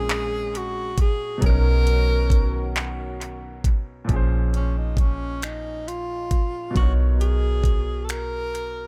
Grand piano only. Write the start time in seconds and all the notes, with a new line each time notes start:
Already playing: A#2 G#3 C4 C#4 A#4
1.38 B2 F#3
1.44 C#4 D#4
1.49 A#4
4.05 A#2 F3
4.10 C#4 G#4
4.16 C5
6.71 B2 F#3
6.76 D4 A#4
6.82 D#4 C#5